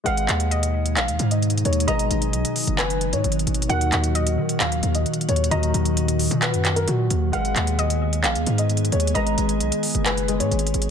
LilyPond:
<<
  \new Staff \with { instrumentName = "Synth pluck" } { \time 4/4 \key gis \dorian \tempo 4 = 132 eis''4 dis''2. | ais''2 gis''2 | fis''4 dis''2. | ais''2 fis''4 r4 |
eis''4 dis''2. | ais''2 gis''2 | }
  \new Staff \with { instrumentName = "Grand piano" } { \time 4/4 \key gis \dorian fis''2 eis''8. dis''8. cis''8 | dis''2 b'8. cis''4~ cis''16 | fis''2 eis''8. dis''8. cis''8 | dis''2 b'8. ais'16 fis'4 |
fis''2 eis''8. dis''8. cis''8 | dis''2 b'8. cis''4~ cis''16 | }
  \new Staff \with { instrumentName = "Grand piano" } { \time 4/4 \key gis \dorian <gis gis' b' dis''>1 | <gis gis' b' dis''>1 | <dis dis' fis' ais'>1 | <dis dis' fis'>1 |
<gis gis' b' dis''>1 | <gis gis' b' dis''>2~ <gis gis' b' dis''>8 <gis gis' b' dis''>4. | }
  \new Staff \with { instrumentName = "Ambient pad" } { \clef bass \time 4/4 \key gis \dorian << { <b, dis dis'>1~ | <b, dis dis'>1 | <fis fis'>1~ | <fis fis'>1 |
<gis gis'>1~ | <gis gis'>1 | } \\ { gis1 | fis1 | ais,1~ | ais,1 |
b1~ | b1 | } >> }
  \new Staff \with { instrumentName = "808-style bass" } { \clef bass \time 4/4 \key gis \dorian gis,,8 dis,4. ais,,16 dis,16 gis,4 dis,8 | gis,,8 gis,,8 b,,16 r8 fis,,4 gis,16 gis,,8 gis,,8 | dis,8 dis,4 dis8 dis,8 dis,8 r8 dis,8 | dis,8 dis,4~ dis,16 ais,8 fis,8. ais,8 dis,8 |
gis,,8 dis,4. ais,,16 dis,16 gis,4 dis,8 | gis,,8 gis,,8 b,,16 r8 fis,,4 gis,16 gis,,8 gis,,8 | }
  \new DrumStaff \with { instrumentName = "Drums" } \drummode { \time 4/4 hh16 hh16 <hc hh>16 hh16 hh16 hh8 hh16 <hc hh>16 hh16 hh16 hh16 \tuplet 3/2 { hh16 hh16 hh16 hh16 hh16 hh16 } | hh16 hh16 hh16 hh16 hh16 hh16 hho16 hh16 <hc hh>16 hh16 hh16 hh16 \tuplet 3/2 { hh16 hh16 hh16 hh16 hh16 hh16 } | hh16 hh16 <hc hh>16 hh16 hh16 hh8 hh16 <hc hh>16 hh16 hh16 hh16 \tuplet 3/2 { hh16 hh16 hh16 hh16 hh16 hh16 } | hh16 hh16 hh16 hh16 hh16 hh16 hho16 hh16 <hc hh>16 hh16 <hc hh>16 hh16 hh8 hh8 |
hh16 hh16 <hc hh>16 hh16 hh16 hh8 hh16 <hc hh>16 hh16 hh16 hh16 \tuplet 3/2 { hh16 hh16 hh16 hh16 hh16 hh16 } | hh16 hh16 hh16 hh16 hh16 hh16 hho16 hh16 <hc hh>16 hh16 hh16 hh16 \tuplet 3/2 { hh16 hh16 hh16 hh16 hh16 r16 } | }
>>